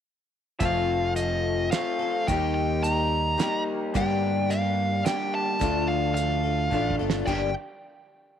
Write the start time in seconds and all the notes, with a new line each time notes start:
0.60 F1 F3 A3 C4 F4 A4 F5, kick, closed hi-hat
1.15 F3 C4 F4 A4 D#5, closed hi-hat
1.71 F3 A3 C4 F4 A4 F5, snare, closed hi-hat
1.99 C4 F4 A4
2.27 D#2 D#3 G3 A#3 D#4 G4 G5, kick, closed hi-hat
2.54 G5
2.83 G3 A#3 D#4 G4 A#5, closed hi-hat
3.38 D#3 G3 A#3 D#4 G4, snare, closed hi-hat
3.94 G2 D3 G3 A#3 D4 G4 G5, kick, closed hi-hat
4.49 G3 A#3 D4 G4 F5, closed hi-hat
5.04 G2 D3 G3 A#3 D4 G4 G5, snare, closed hi-hat
5.35 A5
5.59 D2 D3 F3 A3 D4 F4 A4, kick, closed hi-hat
5.88 F5
6.14 F3 D4 F4 F5, closed hi-hat
6.19 A4
6.43 D4 F4 A4
6.70 A1 D3 F3 A3 D4 F4 A4, kick
6.91 kick
6.99 G1 D4 F4 A4
7.10 snare
7.26 G1 G2 D3 G3 A#3 D4 G4 G5, kick, crash